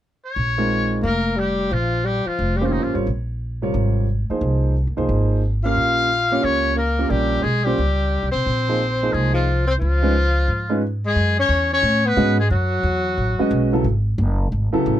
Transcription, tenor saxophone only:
1.03 A#3
1.36 G3
1.72 F3
2.05 G3
2.26 F3
2.56 G3
2.64 F3
2.69 D#3
2.81 F3
5.63 F4
6.43 C#4
6.76 A#3
7.09 G3
7.42 G#3
7.64 G3
8.31 C4
9.13 G#3
9.33 F3
9.67 C4
9.79 F3
11.05 G#3
11.39 C#4
11.73 C#4
12.05 B3
12.40 G#3
12.51 F#3

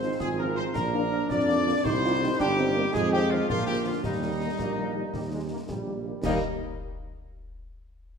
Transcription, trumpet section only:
Already playing: C5
0.20 G#4
0.38 A#4
0.56 C5
0.74 A#4
1.29 D5
1.84 C5
2.39 G4
2.94 G#4
3.12 G4
3.31 F4
3.49 F4
3.66 G4
3.84 F4
4.04 D#4
6.23 D#4

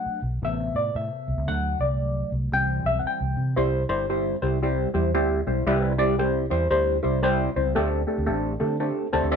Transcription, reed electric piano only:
Already playing: F#3 A3 D4 F#5
0.42 C3 A3 B3 E5
0.76 D5
0.96 E5
1.47 D3 F#3 A3 F#5
1.81 D5
2.52 E3 G3 C4 G5
2.86 E5
2.99 F#5
3.07 G5
3.56 G3 C4 E4 G4 C5
3.89 G3 C4 E4 G4 C5
4.10 G3 C4 E4 G4 C5
4.42 G3 C4 E4 G4 C5
4.62 G3 C4 E4 G4 C5
4.94 G3 C4 E4 G4 C5
5.14 G3 C4 E4 G4 C5
5.47 G3 C4 E4 G4 C5
5.67 G3 C4 E4 G4 B4
5.98 G3 C4 E4 G4 D5
6.19 G3 C4 E4 G4 C5
6.50 G3 C4 E4 G4 C5
6.71 G3 C4 E4 G4 C5
7.02 G3 C4 E4 G4 C5
7.23 G3 C4 E4 G4 C5
7.56 G3 C4 E4 G4 C5
7.75 A3 C4 D4 G4 A4
8.07 A3 C4 D4 G4 A4
8.26 A3 C4 D4 G4 A4
8.60 A3 C4 D4 G4 A4
8.80 A3 C4 D4 G4 A4
9.13 A3 C4 D4 G4 A4
9.31 A3 C4 D4 G4 A4

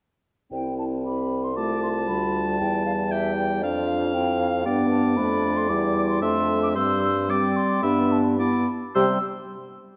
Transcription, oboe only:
1.57 A5
3.12 G5
3.63 F5
4.65 D5
6.22 E5
6.75 C5
7.29 D5
7.82 E5
8.39 D5
8.95 C5

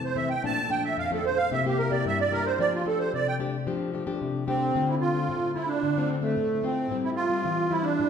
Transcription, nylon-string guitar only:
Already playing: C3 E3 A3 C4
0.15 E3 A3 C4
0.43 A#2 F3 A3 D4
0.69 F3 A3 D4
0.97 F2
1.11 F3 A3 D4
1.23 F3 A3 D4
1.51 C3 A#3 E4 G4
1.66 A#3 E4 G4
1.90 A#3 E4 G4
2.05 G2
2.32 A#3 E4 G4
2.59 F3 A3 D4 G4
2.85 A3 D4 G4
3.13 C3
3.39 A3 D4 G4
3.67 F3 A3 D4 G4
3.94 A3 D4 G4
4.06 A3 D4 G4
4.21 C3
4.47 A3 D4 G4
4.75 D3 A3 C4 F4
5.14 A3 C4 F4
5.29 A2
5.55 A3 C4 F4
5.83 D3
5.97 A3 C4 F4
6.22 A3 C4 F4
6.36 A2
6.63 A3 C4 F4
6.91 A2 G3 C4 E4
7.30 G3 C4
7.45 E3
7.71 G3 C4 E4
7.99 A2

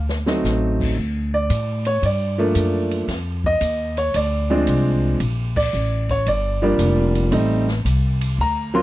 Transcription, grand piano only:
0.26 F#3 A3 C4 D#4
1.34 D5
1.87 C#5
2.05 D5
2.38 F3 A3 A#3 D4
3.46 D#5
3.98 C#5
4.16 D5
4.50 F3 G#3 C4 D4
5.57 D5
6.11 C#5
6.28 D5
6.62 F3 G3 A#3 D4
7.31 G3 A3 C4 D#4
8.41 A#5
8.74 F#3 A#3 C4 F4 C6

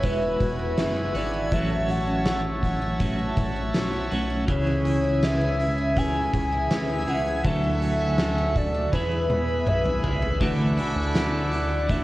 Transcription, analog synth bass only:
Already playing: E1
0.41 E1
0.77 F#1
1.15 G#1
1.52 A1
3.37 A1
3.74 B1
4.12 B1
4.49 C#2
6.34 C#2
6.70 D2
7.07 C#2
7.44 D2
8.93 E2
9.29 E2
9.66 B1
10.03 C#2
10.41 D2
10.96 D2
11.14 D2

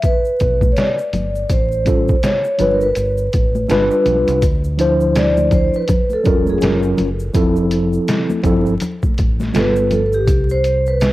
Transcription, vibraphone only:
0.05 B4
0.72 C#5
0.78 D5
1.51 C5
2.24 C#5
2.74 A#4
2.83 B4
5.17 D5
5.54 C5
5.76 B4
6.13 A4
6.50 G#4
9.57 B4
9.93 A4
10.14 G4
10.51 C5
10.88 B4

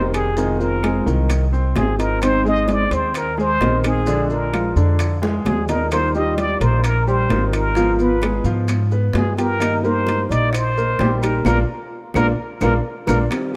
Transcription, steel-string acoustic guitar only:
Already playing: D#3 G3 C4 G4
0.14 G3 C4 G4
0.36 C3 D#3 G#3 C4 F4
0.60 D#3 G#3 C4 F4
0.83 D#3 G#3 C4 F4
1.30 muted steel-string acoustic guitar stroke
1.76 D#3 G#3 C4 F4
1.99 D#3 G#3 C4 F4
2.22 D#3 G#3 C4 D#4 G#4
2.45 G#3 C4 D#4 G#4
2.68 G#3 C4 D#4 G#4
3.15 muted steel-string acoustic guitar stroke
3.60 G#3 C4 D#4 G#4
3.84 G#3 C4 D#4 G#4
4.07 F3 G#3 D4 F4
4.30 G#3 D4 F4
4.53 F3 G#3 D4 F4
4.99 muted steel-string acoustic guitar stroke
5.45 F3 G#3 D4 F4
5.69 G#3 D4 F4
5.92 D#3 G3 D#4 F4
6.15 G3 D#4 F4
6.37 D#3 G3 D#4 F4
6.84 muted steel-string acoustic guitar stroke
7.29 D#3 G3 D#4 F4
7.53 G3 D#4 F4
7.76 G#3 B3 F4
7.99 B3 F4
8.23 G#3 B3 F4
8.69 muted steel-string acoustic guitar stroke
9.14 G#3 B3 F4
9.38 B3 F4
9.59 D#3 G3 A#3 D#4 G4
9.84 G3 A#3 D#4 G4
10.06 G3 A#3 D#4 G4
10.53 muted steel-string acoustic guitar stroke
10.99 G3 A#3 D#4 G4
11.23 G3 A#3 D#4 G4
11.46 G#3 A#3 D4
12.15 G#3 A#3 D4
12.61 G#3 A#3 D4
13.07 G#3 A#3 D4
13.30 D#3 G3 C4 G4

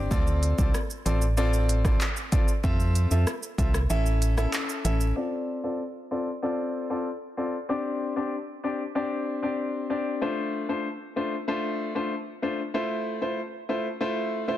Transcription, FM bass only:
0.11 D2
0.59 C2
1.06 A1
2.64 F2
3.11 F2
3.58 C2
3.90 A1
4.85 A1

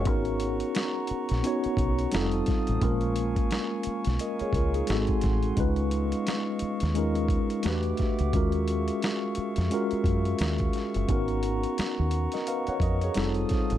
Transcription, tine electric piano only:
Already playing: G#4 C#5
0.04 B3 C#4 D#4 F#4
0.09 A#4
1.43 B3 C#4 D#4 F#4 C#5
2.12 G3 C4 D#4 F4
2.16 A4
2.81 G#3 A#3 C#4 F4 A#4
4.21 A#4 D#5
4.41 G#4 C#5
4.55 F4 A#4
4.75 D#4 G#4
4.87 G#3 B3 D#4 F#4 A4
4.95 C4
5.56 G#3 C#4 D#4 F4 B4
6.94 G#3 C#4 D#4 F4 A#4
7.63 A3 D4 F#4 G4 B4
8.32 G#3 C#4 F4 F#4 A#4
9.70 G#3 C#4 F4 F#4 A#4
11.08 B3 C#4 D#4 F#4
11.12 A#4
12.34 A#4 D#5
12.48 B4 F5
12.68 C#5 F#5
12.82 A#4 D#5
13.03 G#4 C#5
13.15 G3 C4 D#4 F4 A4

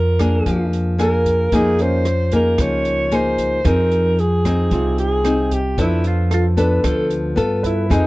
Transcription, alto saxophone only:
Already playing: A#4
1.02 A#4
1.55 G#4
1.82 C5
2.35 A#4
2.61 C#5
3.15 C5
3.67 A#4
4.19 G#4
5.00 G#4
5.54 G4
5.81 E4
6.07 F4
6.34 F4
6.59 B4
6.85 A4
7.66 E4
7.93 D#4

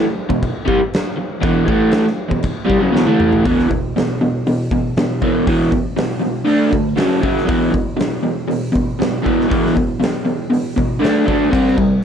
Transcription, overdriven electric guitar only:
0.03 muted overdriven electric guitar stroke
0.29 E2 B2
0.65 C3 G3
0.79 muted overdriven electric guitar stroke
1.17 muted overdriven electric guitar stroke
1.41 E2 B2 E3
1.66 A2 E3 A3
2.05 muted overdriven electric guitar stroke
2.29 E2 B2
2.65 C3 G3
2.79 F#2 C#3
2.92 E2 B2
3.06 A2 E3 A3
3.44 E2 B2 E3
3.69 E2 B2
3.96 E2 B2
4.21 E2 B2
4.47 E2 B2
4.72 E2 B2
4.97 E2 B2
5.22 E2 B2 E3
5.47 E2 B2 E3
5.71 E2 B2
5.96 E2 B2
6.20 E2 B2
6.45 D3 A3 D4
6.71 D3 A3
6.96 F#2 C#3 F#3
7.21 F#2 C#3 F#3
7.46 E2 B2 E3
7.72 E2 B2
7.97 E2 B2
8.23 E2 B2
8.48 E2 B2
8.72 E2 B2
8.99 E2 B2
9.22 E2 B2 E3
9.47 E2 B2 E3
9.75 E2 B2
10.00 E2 B2
10.25 E2 B2
10.50 E2 B2
10.76 E2 B2
11.00 D3 A3 D4
11.26 D3 A3 D4
11.51 C3 G3 C4
11.77 C3 G3

